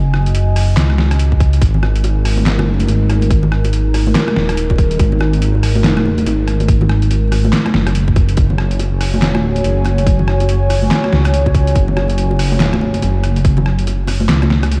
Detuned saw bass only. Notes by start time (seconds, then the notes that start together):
Already playing: F#1
0.77 C#2
1.62 G#1
2.50 G1
2.75 F#1
2.88 G#1
4.36 D#1
4.99 G#1
6.26 G#1
7.74 F#1
8.37 F#1
9.64 F#1
11.12 C#2
11.76 F#1
13.02 F#1
14.29 C#2